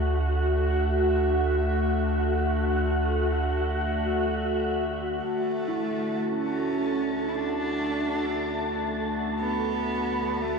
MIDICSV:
0, 0, Header, 1, 6, 480
1, 0, Start_track
1, 0, Key_signature, 2, "major"
1, 0, Tempo, 500000
1, 10165, End_track
2, 0, Start_track
2, 0, Title_t, "Synth texture"
2, 0, Program_c, 0, 99
2, 0, Note_on_c, 0, 66, 80
2, 0, Note_on_c, 0, 78, 82
2, 5053, Note_on_c, 0, 69, 74
2, 5053, Note_on_c, 0, 81, 77
2, 5064, Note_off_c, 0, 66, 0
2, 5067, Note_off_c, 0, 78, 0
2, 10165, Note_off_c, 0, 69, 0
2, 10165, Note_off_c, 0, 81, 0
2, 10165, End_track
3, 0, Start_track
3, 0, Title_t, "Handpan"
3, 0, Program_c, 1, 114
3, 5453, Note_on_c, 1, 64, 45
3, 7958, Note_off_c, 1, 64, 0
3, 10165, End_track
4, 0, Start_track
4, 0, Title_t, "Ambient pad"
4, 0, Program_c, 2, 92
4, 0, Note_on_c, 2, 50, 61
4, 0, Note_on_c, 2, 57, 62
4, 0, Note_on_c, 2, 66, 64
4, 0, Note_on_c, 2, 76, 54
4, 10165, Note_off_c, 2, 50, 0
4, 10165, Note_off_c, 2, 57, 0
4, 10165, Note_off_c, 2, 66, 0
4, 10165, Note_off_c, 2, 76, 0
4, 10165, End_track
5, 0, Start_track
5, 0, Title_t, "Cello"
5, 0, Program_c, 3, 42
5, 5027, Note_on_c, 3, 57, 69
5, 6044, Note_on_c, 3, 61, 83
5, 6058, Note_off_c, 3, 57, 0
5, 6994, Note_on_c, 3, 64, 58
5, 7008, Note_off_c, 3, 61, 0
5, 7056, Note_on_c, 3, 62, 84
5, 7070, Note_off_c, 3, 64, 0
5, 8535, Note_off_c, 3, 62, 0
5, 9027, Note_on_c, 3, 59, 94
5, 10007, Note_on_c, 3, 57, 80
5, 10021, Note_off_c, 3, 59, 0
5, 10165, Note_off_c, 3, 57, 0
5, 10165, End_track
6, 0, Start_track
6, 0, Title_t, "Sub bass"
6, 0, Program_c, 4, 38
6, 0, Note_on_c, 4, 38, 77
6, 4995, Note_off_c, 4, 38, 0
6, 5057, Note_on_c, 4, 38, 73
6, 10165, Note_off_c, 4, 38, 0
6, 10165, End_track
0, 0, End_of_file